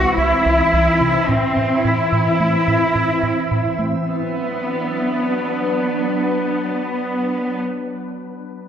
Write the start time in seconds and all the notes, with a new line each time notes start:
Already playing: E3 C4 E4 F#4 E5
0.17 C2 E4
0.46 C2
0.73 C2
1.01 C3
1.29 A2 C4 E4
1.56 A2
1.84 A2 E4
2.12 A2
2.40 A3
2.68 A2
2.95 A2
3.23 A2
3.51 A2
3.79 A3
4.06 F#3 B3 D4 B4